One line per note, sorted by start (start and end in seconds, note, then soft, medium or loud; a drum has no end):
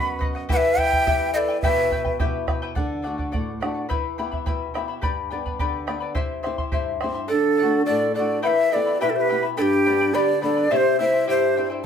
0.00 0.45 F#2 medium
0.00 0.47 B3 soft
0.00 0.47 D#4 soft
0.00 0.48 F#4 medium
0.00 0.18 B4 medium
0.00 0.19 D#5 medium
0.00 0.20 F#5 medium
0.00 0.21 F#5 medium
0.00 0.21 B5 loud
0.19 0.34 B4 medium
0.19 0.34 D#5 medium
0.19 0.34 F#5 medium
0.19 bombo low medium
0.35 0.49 D#5 soft
0.35 0.49 F#5 medium
0.49 1.59 E3 medium
0.49 0.77 E4 medium
0.49 0.77 G4 medium
0.49 0.77 B4 medium
0.49 0.79 B4 medium
0.49 0.76 E5 medium
0.49 0.58 F#5 loud
0.49 0.78 G5 medium
0.49 bombo low medium
0.57 0.80 E5 loud
0.77 0.92 E4 medium
0.77 0.92 B4 medium
0.77 0.91 E5 medium
0.77 1.34 E5 medium
0.77 0.91 G5 medium
0.77 1.33 G5 loud
0.77 bombo low soft
0.92 1.05 E4 soft
0.92 1.06 B4 soft
0.92 1.06 G5 medium
0.92 bombo low medium
1.06 1.61 B3 soft
1.06 1.33 E4 medium
1.06 1.61 E4 soft
1.06 1.34 G4 medium
1.06 1.62 G4 medium
1.06 1.34 B4 medium
1.06 1.33 E5 medium
1.06 1.34 G5 medium
1.06 bombo low medium
1.34 1.48 E4 medium
1.34 1.60 A4 medium
1.34 1.49 B4 medium
1.34 1.60 D5 medium
1.34 1.38 D#5 medium
1.34 1.48 E5 medium
1.34 1.47 G5 medium
1.48 1.63 E4 soft
1.48 1.63 B4 soft
1.48 1.62 G5 medium
1.61 2.73 B2 medium
1.61 1.91 E4 medium
1.61 1.91 G4 medium
1.61 2.14 B4 medium
1.61 1.91 B4 medium
1.61 2.15 E5 loud
1.61 1.90 E5 medium
1.61 1.91 G5 medium
1.61 bombo low medium
1.91 2.05 E4 medium
1.91 2.04 B4 medium
1.91 2.05 E5 medium
1.91 2.03 G5 medium
1.91 bombo low soft
2.05 2.19 E4 soft
2.05 2.19 B4 soft
2.05 2.19 G5 medium
2.05 bombo low soft
2.19 2.75 B3 soft
2.19 2.47 E4 medium
2.19 2.75 E4 soft
2.19 2.48 G4 medium
2.19 2.75 G4 medium
2.19 2.47 B4 medium
2.19 2.46 E5 medium
2.19 2.47 G5 medium
2.19 bombo low medium
2.47 2.62 E4 medium
2.47 2.61 B4 medium
2.47 2.61 E5 medium
2.47 2.61 G5 medium
2.47 bombo rim medium
2.47 bombo low medium
2.62 2.76 E4 medium
2.62 2.75 B4 medium
2.62 2.76 G5 medium
2.75 3.32 D3 medium
2.75 3.01 A4 medium
2.75 3.03 D5 medium
2.75 3.03 F#5 medium
2.75 bombo low medium
3.02 3.50 A3 soft
3.02 3.17 A4 medium
3.02 3.18 D5 medium
3.02 3.17 F#5 medium
3.06 3.51 D4 soft
3.06 3.51 F#4 soft
3.18 3.31 D5 soft
3.18 3.32 F#5 soft
3.18 bombo low soft
3.32 3.88 A2 soft
3.32 3.59 A4 medium
3.32 3.60 D5 medium
3.32 3.61 F#5 medium
3.32 bombo low medium
3.60 3.84 A3 soft
3.60 3.84 D4 soft
3.60 3.85 F#4 soft
3.60 3.75 A4 soft
3.60 3.74 D5 medium
3.60 3.73 F#5 medium
3.60 bombo rim medium
3.74 3.88 D5 soft
3.74 3.89 F#5 soft
3.89 4.45 E3 medium
3.89 4.17 E4 medium
3.89 4.17 B4 medium
3.89 4.17 E5 medium
3.89 4.17 G5 medium
3.89 4.18 B5 medium
3.89 bombo low medium
4.18 4.64 B3 soft
4.18 4.32 E4 medium
4.18 4.64 E4 soft
4.18 4.64 G4 soft
4.18 4.31 E5 medium
4.18 4.32 G5 medium
4.18 4.30 B5 medium
4.31 4.45 E4 soft
4.31 4.45 E5 soft
4.31 4.46 B5 soft
4.31 bombo low soft
4.46 5.02 B2 medium
4.46 4.73 E4 medium
4.46 4.74 B4 medium
4.46 4.74 E5 medium
4.46 4.73 G5 medium
4.46 4.74 B5 medium
4.46 bombo low medium
4.74 4.98 B3 soft
4.74 4.88 E4 medium
4.74 4.98 E4 soft
4.74 4.99 G4 soft
4.74 4.88 E5 medium
4.74 4.89 G5 medium
4.74 4.87 B5 medium
4.74 bombo rim medium
4.88 5.02 E4 soft
4.88 5.02 E5 soft
4.88 5.02 B5 medium
5.02 5.59 G2 medium
5.02 5.31 G4 medium
5.02 5.30 B4 medium
5.02 5.31 D5 medium
5.02 5.29 G5 medium
5.02 5.30 B5 medium
5.02 bombo low medium
5.31 5.77 B3 soft
5.31 5.77 D4 soft
5.31 5.77 G4 soft
5.31 5.45 B4 medium
5.31 5.45 D5 medium
5.31 5.45 G5 medium
5.31 5.44 B5 medium
5.46 5.59 B4 soft
5.46 5.59 D5 soft
5.46 5.59 B5 medium
5.46 bombo low soft
5.59 6.15 D3 medium
5.59 5.88 G4 medium
5.59 5.86 B4 medium
5.59 5.87 D5 medium
5.59 5.86 G5 medium
5.59 5.87 B5 medium
5.59 bombo low medium
5.87 6.11 B3 soft
5.87 6.11 D4 soft
5.87 6.11 G4 soft
5.87 6.01 B4 medium
5.87 6.00 D5 medium
5.87 6.02 G5 soft
5.87 5.99 B5 medium
5.87 bombo rim medium
6.00 6.15 B4 soft
6.00 6.15 D5 soft
6.00 6.15 B5 medium
6.15 6.72 C3 medium
6.15 6.42 E4 medium
6.15 6.44 G4 medium
6.15 6.42 C5 medium
6.15 6.42 E5 medium
6.15 6.43 C6 medium
6.15 bombo low medium
6.43 6.91 C4 soft
6.43 6.58 E4 medium
6.43 6.91 E4 soft
6.43 6.91 G4 soft
6.43 6.58 C5 medium
6.43 6.58 E5 medium
6.43 6.57 C6 medium
6.43 bombo rim soft
6.58 6.71 E4 soft
6.58 6.72 E5 soft
6.58 6.72 C6 medium
6.58 bombo low soft
6.72 7.29 G2 soft
6.72 7.00 E4 medium
6.72 7.01 G4 medium
6.72 6.99 C5 medium
6.72 7.01 E5 medium
6.72 7.00 C6 medium
6.72 bombo low medium
7.00 7.25 C4 soft
7.00 7.14 E4 medium
7.00 7.26 E4 soft
7.00 7.26 G4 soft
7.00 7.15 C5 medium
7.00 7.14 E5 medium
7.00 7.13 C6 medium
7.00 bombo rim medium
7.15 7.28 E4 soft
7.15 7.28 E5 soft
7.15 7.29 C6 soft
7.28 7.83 D4 medium
7.28 7.56 A4 medium
7.28 7.82 A4 loud
7.28 7.57 D5 medium
7.28 7.58 F#5 medium
7.33 7.87 D3 medium
7.57 7.72 A4 medium
7.57 7.71 D5 medium
7.57 7.69 F#5 medium
7.62 8.06 A3 soft
7.62 8.06 D4 soft
7.62 8.06 F#4 medium
7.70 7.85 D5 soft
7.70 7.86 F#5 soft
7.86 8.43 A2 medium
7.86 8.13 A4 medium
7.86 8.13 D5 medium
7.86 8.14 D5 medium
7.86 8.14 F#5 medium
8.14 8.39 A3 soft
8.14 8.29 A4 medium
8.14 8.41 A4 medium
8.14 8.29 D5 medium
8.14 8.42 D5 medium
8.14 8.27 F#5 medium
8.18 8.40 D4 soft
8.18 8.40 F#4 medium
8.28 8.42 D5 soft
8.28 8.42 F#5 soft
8.42 8.70 E4 medium
8.42 8.71 G4 medium
8.42 8.73 B4 medium
8.42 8.71 E5 medium
8.42 8.48 F#5 medium
8.42 8.70 G5 medium
8.42 8.71 B5 medium
8.47 9.00 E3 medium
8.47 8.75 E5 loud
8.71 9.19 B3 soft
8.71 8.86 E4 medium
8.71 8.99 A4 medium
8.71 9.01 D5 medium
8.71 8.86 E5 medium
8.71 8.86 G5 medium
8.71 8.85 B5 medium
8.76 9.19 E4 soft
8.76 9.20 G4 medium
8.86 9.00 E4 soft
8.86 9.00 E5 soft
8.86 9.00 B5 soft
8.99 9.56 B2 medium
8.99 9.28 E4 medium
8.99 9.08 G4 medium
8.99 9.29 G4 medium
8.99 9.11 B4 medium
8.99 9.29 E5 medium
8.99 9.28 G5 medium
8.99 9.29 B5 medium
9.06 9.14 E4 medium
9.06 9.17 A4 medium
9.13 9.42 G4 medium
9.13 9.22 C5 medium
9.21 9.44 B4 medium
9.29 9.53 B3 soft
9.29 9.43 E4 medium
9.29 9.53 E4 soft
9.29 9.54 G4 medium
9.29 9.42 E5 medium
9.29 9.43 G5 medium
9.29 9.42 B5 medium
9.43 9.57 E4 soft
9.43 9.57 E5 soft
9.43 9.57 B5 soft
9.57 10.13 G2 medium
9.57 10.16 D4 medium
9.57 9.85 G4 medium
9.57 9.63 A4 loud
9.57 9.85 B4 medium
9.57 9.85 D5 medium
9.57 9.85 G5 medium
9.57 9.85 B5 medium
9.62 10.16 G4 loud
9.86 10.31 G3 soft
9.86 10.32 B3 soft
9.86 10.32 D4 medium
9.86 10.00 B4 medium
9.86 10.00 D5 medium
9.86 10.00 G5 medium
9.86 10.00 B5 medium
10.01 10.13 B4 soft
10.01 10.14 D5 soft
10.01 10.14 B5 medium
10.14 10.69 D3 medium
10.14 10.42 G4 medium
10.14 10.41 G4 medium
10.14 10.40 B4 medium
10.14 10.42 D5 medium
10.14 10.41 D5 medium
10.14 10.40 G5 medium
10.14 10.41 B5 medium
10.41 10.65 G3 soft
10.41 10.65 B3 soft
10.41 10.66 D4 medium
10.41 10.72 A4 medium
10.41 10.56 B4 medium
10.41 10.56 D5 medium
10.41 10.72 D5 medium
10.41 10.56 G5 medium
10.41 10.55 B5 medium
10.57 10.71 B4 soft
10.57 10.71 D5 soft
10.57 10.70 B5 soft
10.71 11.26 C3 medium
10.71 10.98 E4 medium
10.71 10.99 G4 medium
10.71 10.99 C5 medium
10.71 10.77 D5 medium
10.71 10.98 E5 medium
10.71 10.99 G5 medium
10.76 10.99 C5 loud
10.99 11.45 G3 soft
10.99 11.45 C4 soft
10.99 11.13 E4 medium
10.99 11.45 E4 soft
10.99 11.13 C5 medium
10.99 11.26 C5 medium
10.99 11.13 E5 medium
10.99 11.26 E5 loud
10.99 11.12 G5 medium
11.14 11.27 E4 soft
11.14 11.27 C5 soft
11.14 11.27 G5 medium
11.27 11.83 G2 medium
11.27 11.55 E4 medium
11.27 11.55 G4 medium
11.27 11.67 G4 medium
11.27 11.56 C5 medium
11.27 11.68 C5 medium
11.27 11.54 E5 medium
11.27 11.56 G5 medium
11.56 11.79 G3 soft
11.56 11.80 C4 soft
11.56 11.70 E4 medium
11.56 11.80 E4 medium
11.56 11.70 C5 medium
11.56 11.70 E5 soft
11.56 11.69 G5 medium
11.70 11.83 E4 soft
11.70 11.84 C5 soft
11.70 11.84 G5 medium